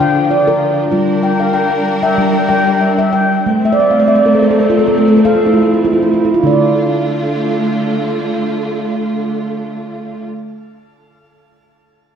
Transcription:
Already playing: string section D3 F3 F4, handpan F5
0.00 handpan D3 G5
0.31 handpan D5
0.47 handpan A#4
0.92 string section G3 D4 A#4, handpan G3 F4
1.23 handpan G5
1.40 handpan F5
1.54 handpan G5
1.71 handpan G5
2.03 handpan E5 G5
2.18 handpan G3
2.34 handpan G5
2.49 handpan G3 G5
2.67 handpan G5
2.81 handpan E5
2.98 handpan E5
3.13 handpan G5
3.46 string section A3 C4, handpan A3
3.65 handpan E5
3.72 handpan D5
3.80 handpan E5
3.91 handpan F5
4.00 handpan D5
4.08 handpan E5
4.15 handpan D5
4.26 handpan A#4
4.35 handpan A4
4.42 handpan A#4
4.51 handpan A4
4.60 handpan A#4
4.70 handpan F4 A4
4.79 handpan A#4
4.87 handpan A3 A4
4.98 handpan A#4
5.08 handpan A4
5.17 handpan A#4
5.25 handpan A3 A4 F5
5.35 handpan F4
5.46 handpan E4
5.54 handpan F4
5.62 handpan E4
5.74 handpan F4
5.84 handpan E4 F4
5.93 handpan F4
6.03 handpan E4
6.13 handpan F4
6.25 handpan E4
6.34 handpan F4
6.42 string section D3 A3 F4, handpan D3 D4
6.47 handpan D5
6.51 handpan D5

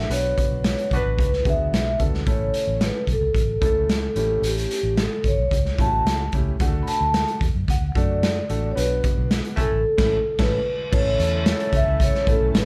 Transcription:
0.10 fingered electric bass B1, grand piano B3 D4 F#4 B4, vibraphone C#5, closed hi-hat
0.38 kick, closed hi-hat
0.51 fingered electric bass B1
0.64 snare, closed hi-hat
0.78 closed hi-hat
0.91 fingered electric bass B1, horn section B3 D4 F#4 B4, kick, closed hi-hat
0.95 vibraphone B4
1.05 fingered electric bass A1
1.19 fingered electric bass C#2, kick, closed hi-hat
1.33 snare
1.45 fingered electric bass D2, grand piano B3 D4 F#4 G#4, vibraphone E5, kick, closed hi-hat
1.72 fingered electric bass B1, snare, closed hi-hat
1.99 fingered electric bass D2, grand piano B3 D4 F#4 A4, kick, closed hi-hat
2.14 snare
2.26 fingered electric bass A1, grand piano A3 C#4 E4 A4, vibraphone C#5, kick, closed hi-hat
2.54 closed hi-hat
2.67 fingered electric bass A1
2.81 vibraphone B4, snare, closed hi-hat
3.07 fingered electric bass B1, kick, closed hi-hat
3.12 vibraphone A4
3.21 fingered electric bass C#2
3.34 fingered electric bass A1, kick, closed hi-hat
3.61 fingered electric bass C#2, grand piano A3 C#4 E4 A4, kick, closed hi-hat
3.65 vibraphone A4
3.89 snare, closed hi-hat
4.16 fingered electric bass A1, grand piano A3 C#4 E4 G4, closed hi-hat
4.42 fingered electric bass A1, closed hi-hat
4.48 vibraphone G4
4.58 closed hi-hat
4.71 closed hi-hat
4.83 fingered electric bass A1
4.97 vibraphone A4, snare, closed hi-hat
5.24 fingered electric bass G1, kick, closed hi-hat
5.28 vibraphone C#5
5.38 fingered electric bass B1
5.51 fingered electric bass C#2, kick, closed hi-hat
5.65 snare
5.79 fingered electric bass A1, grand piano A3 C#4 E4 F4, vibraphone A5, kick, closed hi-hat
5.86 grand piano F#4
6.05 fingered electric bass C#2, snare, closed hi-hat
6.32 fingered electric bass C#2, grand piano A3 C#4 E4 G4, kick, closed hi-hat
6.60 fingered electric bass D2, grand piano A3 D4 F#4 G#4, vibraphone F#5, kick, closed hi-hat
6.68 grand piano A4
6.83 vibraphone B5
6.87 vibraphone A5, closed hi-hat
7.01 fingered electric bass D2
7.14 snare, closed hi-hat
7.28 closed hi-hat
7.41 fingered electric bass E2, kick, closed hi-hat
7.55 fingered electric bass F#2
7.68 fingered electric bass D2, vibraphone F#5, kick, closed hi-hat
7.95 fingered electric bass F#2, grand piano A3 D4 F#4 A4, vibraphone D5, kick, closed hi-hat
8.23 snare, closed hi-hat
8.50 fingered electric bass A1, grand piano A3 D4 F#4 A4, closed hi-hat
8.71 grand piano B3 D4, vibraphone C#5
8.76 fingered electric bass B1, grand piano F#4 B4, vibraphone B4, closed hi-hat
9.04 kick, closed hi-hat
9.18 fingered electric bass B1
9.31 snare, closed hi-hat
9.45 closed hi-hat
9.56 fingered electric bass B1, horn section A3 C#4 E4 A4, kick, closed hi-hat
9.60 vibraphone A4
9.72 fingered electric bass A1
9.98 fingered electric bass A1, grand piano A3 C#4 E4 A4, kick, snare, crash
10.15 vibraphone A4
10.39 fingered electric bass A1, grand piano A3 C#4 E4 A4, vibraphone B4, kick, snare, crash
10.91 fingered electric bass A1, tonewheel organ E3 A3 C#4 A4, horn section A3 C#4 E4 A4, grand piano A3 C#4 E4 A4, vibraphone C#5, kick, crash
11.19 fingered electric bass E2, closed hi-hat
11.46 snare, closed hi-hat
11.60 closed hi-hat
11.73 fingered electric bass C#2, vibraphone E5, kick, closed hi-hat
11.87 fingered electric bass C#2
12.00 vibraphone C#5, kick, closed hi-hat
12.15 snare
12.27 fingered electric bass A1, grand piano A3 B3 E4 A4, vibraphone A4, kick, closed hi-hat
12.33 grand piano C#4
12.41 fingered electric bass B1
12.55 fingered electric bass A1, vibraphone B4, snare, closed hi-hat

